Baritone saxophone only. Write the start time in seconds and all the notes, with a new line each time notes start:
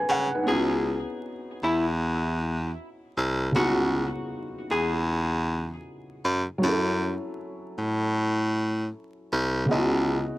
0.09 C#3
0.48 C#2
1.63 E2
3.17 C2
3.56 C#2
4.71 E2
6.25 F#2
6.63 F#2
7.79 A2
9.32 C2
9.71 C#2